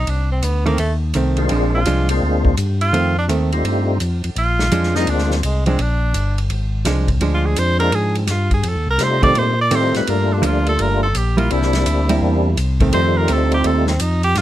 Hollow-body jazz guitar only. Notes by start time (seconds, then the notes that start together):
0.66 D#3 A3 C4
1.15 D#3 A3 C4
1.51 F3 G#3 D4
1.86 F3 G#3 D4
2.93 D#3 A3 C4
3.29 D#3 A3 C4
4.72 F3 G#3 D4
5.67 F3 G#3 D4
6.86 F3 G#3 D4
7.21 F3 G#3 D4
9.23 D#3 A3 C4
9.71 D#3 A3 C4
10.42 F3 A#3 D4
11.37 G3 A#3 E4
12.09 G3 A#3 E4
12.81 D#3 A3 C4
13.29 A3 C4